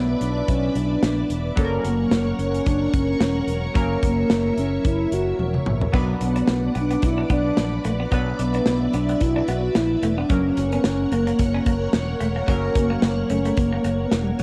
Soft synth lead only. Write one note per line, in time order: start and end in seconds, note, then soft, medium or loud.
0.00 0.18 B3 loud
0.22 0.51 D4 loud
0.50 0.79 C#4 loud
0.77 1.31 D4 medium
1.85 2.36 A#3 medium
2.39 2.68 C#4 loud
2.66 2.95 D4 loud
2.94 3.48 C#4 loud
4.04 4.60 A#3 medium
4.59 4.85 C#4 medium
4.86 5.15 E4 loud
5.13 5.67 F#4 loud
6.22 6.73 B3 medium
6.78 7.07 D4 loud
7.06 7.32 E4 loud
7.32 7.82 D4 medium
8.40 8.96 B3 loud
8.94 9.23 D4 medium
9.22 9.50 E4 loud
9.48 9.77 F#4 loud
9.76 10.19 E4 loud
10.17 10.29 D4 medium
10.30 10.73 C#4 loud
10.72 10.87 B3 medium
10.85 11.13 C#4 loud
11.12 12.21 A#3 medium
12.77 13.32 A#3 loud
13.30 13.60 C#4 loud
13.58 14.06 A#3 medium
14.05 14.15 B3 medium
14.13 14.25 A#3 medium
14.23 14.33 G3 medium
14.31 14.40 A#3 medium